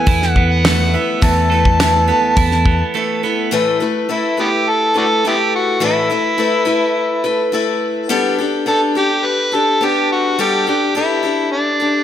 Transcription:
Already playing: E2 E3 A3 B3 E4 A4 B4 G#5
0.07 E2 E4, kick, open hi-hat
0.22 snare
0.31 F#5
0.36 B3, kick
0.52 F#5
0.64 A3 E4 A4 B4, snare, open hi-hat
0.94 B3 E4 A4 B4 E5
1.22 E2 E3 A3 E4 A4 B4 A5, kick, open hi-hat
1.50 A3 A4 B4
1.54 E4
1.65 kick
1.80 E3 A3 E4 A4 B4, snare, open hi-hat
2.08 B3 E4 A4 B4
2.37 E2 E4, kick, open hi-hat
2.51 snare
2.66 B3, kick
2.94 A3 E4 A4 B4
3.23 B3 E4 A4 B4
3.51 A2 E3 A3 E4 A4 B4
3.80 A3 E4 A4 B4
4.09 A3 E4 A4 B4
4.37 A3 B3 E4 G4 A4 B4
4.69 A4
4.94 A3 D4 E4 F#4 A4 B4
5.25 A3 B3 E4 G4 A4 B4
5.56 F#4
5.80 A2 E3 A3 E4 A4 B4
5.84 E4
6.10 A3 E4 A4 B4
6.38 A3 E4 A4 B4
6.65 A3 E4 A4 B4
7.24 A3 E4 A4 B4
7.52 A3 E4 A4 B4
8.09 G3 B3 D4 G4 A4
8.38 D4 G4 A4
8.66 B3 D4 G4 A4
8.95 D4 G4 A4
9.26 B4
9.52 D4 G4 A4
9.81 B3 D4 G4 A4
10.12 F#4
10.39 G3 B3 D4 G4 A4
10.67 D4 G4 A4
10.95 B3 D4 E4 G4 A4
11.23 D4 G4 A4
11.52 D4
11.80 D4 G4 A4

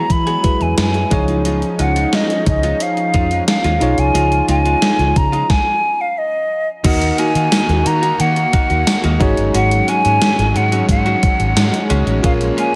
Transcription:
Already playing: F#3 G#3 E4 F#4 G#4 B4 A#5
0.10 E3 B5, kick, closed hi-hat
0.27 B3 F#4 G#4, closed hi-hat
0.43 E4 F#4 G#4 B4, muted clean electric guitar stroke, kick, closed hi-hat
0.61 E2 G#5, muted clean electric guitar stroke, closed hi-hat
0.78 F#2 G#5, muted clean electric guitar stroke, snare, closed hi-hat
0.94 muted clean electric guitar stroke, closed hi-hat
1.10 C#2 F3 G#3 C#4 D#4 F4 G#4 C#5, kick, closed hi-hat
1.28 G#3 D#4 F4, closed hi-hat
1.45 G#3 D#4 F4, closed hi-hat
1.62 muted clean electric guitar stroke, closed hi-hat
1.79 C#2 G#3 D#4 F4 F#5, closed hi-hat
1.96 G#3 D#4 F4, closed hi-hat
2.12 G#3 D#4 F4 D#5, snare, closed hi-hat
2.29 muted clean electric guitar stroke, closed hi-hat
2.46 C#2 D#5, muted clean electric guitar stroke, kick, closed hi-hat
2.63 G#3 D#4 F4, closed hi-hat
2.80 F5, muted clean electric guitar stroke, closed hi-hat
2.97 muted clean electric guitar stroke, closed hi-hat
3.14 F2 G#3 D#4 F4, kick, closed hi-hat
3.31 G#3 D#4 F4, closed hi-hat
3.48 F5, snare, closed hi-hat
3.64 D#2 G#3 D#4 F4, closed hi-hat
3.80 B1 G#3 D#4 F4 G#4 C#5, closed hi-hat
3.98 C2 G#5, muted clean electric guitar stroke, closed hi-hat
4.15 C#2 G#3 D#4 F4, closed hi-hat
4.31 muted clean electric guitar stroke, closed hi-hat
4.48 C#2 G#3 D#4 F4 G#5, closed hi-hat
4.65 G#3 D#4 F4, closed hi-hat
4.81 G#3 D#4 F4, snare, closed hi-hat
4.99 C#2, muted clean electric guitar stroke, closed hi-hat
5.16 C#3 A#5, muted clean electric guitar stroke, kick, closed hi-hat
5.32 G#3 D#4 F4, closed hi-hat
5.50 G#5, kick, snare
6.01 F5
6.18 D#5
6.84 D#2 D#3 A#3 D#4 F#4 A#4 D#5 F#5, kick, closed hi-hat, crash
7.01 muted clean electric guitar stroke, closed hi-hat
7.18 A#3 D#4 F#4 G#5, closed hi-hat
7.35 D#3 A#3 D#4 F#4, closed hi-hat
7.51 A#3 D#4 F#4, snare, closed hi-hat, tambourine
7.69 D#2, closed hi-hat
7.85 D#3 A#3 D#4 A#5, muted clean electric guitar stroke, closed hi-hat
8.02 A#3 D#4 F#4, closed hi-hat
8.19 D#3 A#3 D#4 F#5, muted clean electric guitar stroke, closed hi-hat
8.36 muted clean electric guitar stroke, closed hi-hat
8.53 A#3 D#4 F#4, kick, closed hi-hat
8.70 D#2 A#3 D#4 F#4, closed hi-hat
8.87 snare, closed hi-hat, tambourine
9.04 D#2 A#3 D#4 F#4, closed hi-hat
9.19 G#1 G#2 D#3 F#3 G#3 C#4 D#4 F#4 G#4 C#5, kick, closed hi-hat
9.37 G1, muted clean electric guitar stroke, closed hi-hat
9.54 G#1 G#3 C#4 F#4 F#5, closed hi-hat
9.71 muted clean electric guitar stroke, closed hi-hat
9.88 G#3 C#4 F#4 G#5, closed hi-hat
10.05 G#2 G#3 C#4 F#4, closed hi-hat
10.22 G#3 C#4 F#4, snare, closed hi-hat, tambourine
10.39 G#1, muted clean electric guitar stroke, closed hi-hat
10.54 G#2 D#3 G#3 F#5, muted clean electric guitar stroke, closed hi-hat
10.72 G#3 C#4 F#4, closed hi-hat
10.88 G#2 D#3 G#3 F#5, muted clean electric guitar stroke, kick, closed hi-hat
11.06 G#3 C#4 F#4, closed hi-hat
11.23 muted clean electric guitar stroke, kick, closed hi-hat
11.40 G#1, muted clean electric guitar stroke, closed hi-hat
11.55 G#2 D#3 G#3, muted clean electric guitar stroke, snare, closed hi-hat, tambourine
11.73 muted clean electric guitar stroke, closed hi-hat
11.90 C#2 G#3 C#4 F#4, closed hi-hat
12.07 A1 G#3 C#4 F#4, closed hi-hat
12.23 A#2 F3 G#3 A#3 C#4 F4 G#4 A#4 C#5 F5, kick, closed hi-hat
12.41 muted clean electric guitar stroke, closed hi-hat
12.57 G#3 C#4 F4 G#5, closed hi-hat

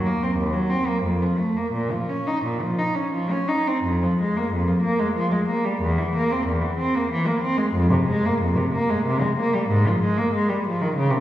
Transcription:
0.06 A#3
0.23 C4
0.37 D#2
0.52 F#3
0.70 C4
0.87 A#3
1.03 F2
1.22 F3
1.38 A3
1.57 A#3
1.73 A#2
1.92 F3
2.09 C#4
2.27 D#4
2.44 A#2
2.61 F3
2.78 D#4
2.95 C#4
3.13 F3
3.31 C#4
3.48 D#4
3.67 C4
3.84 F2
4.03 F3
4.21 G#3
4.37 A#3
4.52 F2
4.67 F3
4.82 A#3
4.99 G#3
5.16 F3
5.31 G#3
5.48 A#3
5.65 G3
5.81 E2
5.98 E3
6.15 A#3
6.31 C4
6.46 E2
6.62 E3
6.79 C4
6.95 A#3
7.11 E3
7.27 A#3
7.42 C4
7.58 G#3
7.74 F2
7.92 C3
8.09 G#3
8.25 A#3
8.41 F2
8.56 C3
8.74 A#3
8.90 G#3
9.06 C3
9.21 G#3
9.37 A#3
9.54 G3
9.69 G#2
9.87 F3
10.02 G#3
10.18 A#3
10.34 G#3
10.49 G3
10.67 F3
10.82 D#3
10.96 C#3
11.10 C3

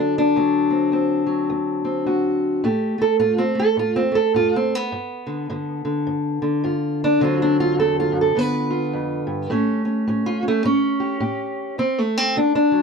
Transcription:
Already playing: D2 D3 F#3 C4 D4
0.18 D4
0.36 D2 F#3
0.70 C4
0.92 D2 C4
1.26 F#3
1.50 D2
1.85 C4
2.06 D2 F#4
2.64 A2 A3 G4
2.98 A3 A4
3.19 A2 F4
3.38 C4
3.55 A3
3.59 A4
3.77 A2 F4
3.96 C4
4.12 A3 A4
4.34 A2 F4
4.56 C4
4.75 B3
4.92 G2
5.27 D3
5.49 G2 D3
5.85 D3
6.07 G2
6.42 D3
6.64 G2 F4
7.04 D4
7.20 D2 D3 F#3 C4 F4
7.42 D4
7.60 F4
7.78 E2 A4
8.00 F4
8.12 F#2
8.21 A4
8.35 G2 D3 B3 F4 B4
8.70 F4
8.93 F2
9.27 G2
9.50 A2 A3 C#4 G4
9.85 C#4
10.07 A2 C#4
10.26 F4
10.43 C#4
10.48 A3
10.64 A2 C#4
11.00 G4
11.20 A2 G4
11.78 D2 C4
11.98 A3
12.17 C4
12.36 D2 D4
12.55 D4
12.72 F#3

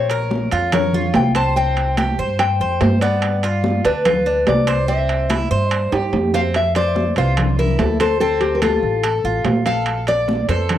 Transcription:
Already playing: A#1 C#5
0.10 A#4, high conga, high timbale
0.31 high conga, low timbale
0.51 F2 F4, high conga, high timbale
0.72 A#4 C#5, high conga, low conga, high timbale
0.93 F4, high conga, low conga
1.14 C2 G5, high conga, high timbale, low timbale
1.35 C5 A5, high conga, high timbale
1.56 C4 G5, high conga
1.77 high conga, high timbale
1.97 G4, high conga, high timbale, low timbale
2.18 G2 C5
2.39 G5, high conga, high timbale
2.60 F2 C5, high conga
2.81 G2 C5, high conga, high timbale, low timbale
3.01 B3 D5, high timbale
3.22 high conga, high timbale
3.43 F4, high conga, high timbale
3.64 high conga, low timbale
3.85 D2 D4 B4, high conga, high timbale
4.05 F4 B4, high conga, low conga, high timbale
4.26 D4, high conga
4.47 C2 D5, high conga, high timbale, low timbale
4.67 C5, high conga, high timbale
4.88 C4 E5, high conga
5.09 high conga, high timbale
5.30 E4, high conga, high timbale, low timbale
5.51 G2 C5
5.70 D5, high conga, high timbale
5.92 G2 G4, high conga, high timbale
6.13 F2, high conga, high timbale
6.34 C4 F5, high conga, low timbale
6.54 E5, high conga, high timbale
6.75 C5 D5, high conga, high timbale
6.95 high conga, low timbale
7.16 C2 F4 C5, high conga, high timbale
7.37 high conga, low conga, high timbale
7.59 E4 A#4, high conga, low conga
7.79 D2 A4, high conga, high timbale, low timbale
8.00 A4 C5, high conga, high timbale
8.20 C4 A4, high conga
8.41 G4, high conga, high timbale
8.55 A#4
8.62 F4 A4, high conga, high timbale, low timbale
8.83 A1
9.04 A4, high conga, high timbale
9.24 A1 F4, high conga
9.45 A#1, high conga, high timbale, low timbale
9.66 A4 F5, high conga, high timbale
9.86 high conga, high timbale
10.07 D5, high conga, high timbale
10.28 high conga, low timbale
10.48 F2 A4 C5, high conga, high timbale
10.69 high conga, low conga, high timbale

